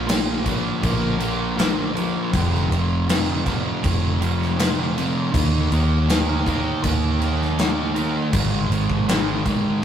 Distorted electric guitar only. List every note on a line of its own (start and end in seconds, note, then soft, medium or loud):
0.07 0.80 A#2 medium
0.07 0.47 F3 medium
0.07 0.44 A#3 medium
0.45 0.82 F3 medium
0.45 0.82 A#3 medium
0.82 1.55 A#2 medium
0.82 1.19 F3 loud
0.82 1.17 A#3 loud
1.18 1.56 F3 medium
1.18 1.57 A#3 medium
1.56 2.30 A#2 medium
1.56 1.95 F3 medium
1.56 1.92 A#3 medium
1.93 2.31 F3 medium
1.93 2.30 A#3 medium
2.31 3.07 F2 loud
2.31 2.71 C3 loud
2.31 2.69 F3 loud
2.70 3.08 C3 medium
2.70 3.10 F3 medium
3.08 3.82 F2 medium
3.08 3.46 C3 medium
3.08 3.44 F3 medium
3.45 3.84 C3 medium
3.45 3.84 F3 medium
3.83 4.55 F2 loud
3.83 4.22 C3 medium
3.83 4.20 F3 loud
4.21 4.57 C3 medium
4.21 4.58 F3 medium
4.57 5.30 F2 medium
4.57 4.97 C3 medium
4.57 4.95 F3 medium
4.96 5.31 C3 medium
4.96 5.31 F3 medium
5.32 6.06 D#3 loud
5.32 5.71 A#3 loud
5.32 5.69 D#4 loud
5.70 6.08 A#3 medium
5.70 6.10 D#4 medium
6.08 6.81 D#3 medium
6.08 6.47 A#3 medium
6.08 6.46 D#4 loud
6.46 6.83 A#3 medium
6.46 6.83 D#4 medium
6.82 7.57 D#3 loud
6.82 7.22 A#3 loud
6.82 7.20 D#4 loud
7.21 7.59 A#3 medium
7.21 7.60 D#4 medium
7.58 8.31 D#3 medium
7.58 7.96 A#3 medium
7.58 7.93 D#4 medium
7.94 8.32 A#3 medium
7.94 8.30 D#4 medium
8.32 9.05 G#2 loud
8.32 8.71 D#3 loud
8.32 8.69 G#3 loud
8.71 9.07 D#3 medium
8.71 9.08 G#3 medium
9.07 9.80 G#2 medium
9.07 9.46 D#3 medium
9.07 9.44 G#3 medium
9.45 9.81 D#3 medium
9.45 9.82 G#3 medium
9.81 9.84 G#2 medium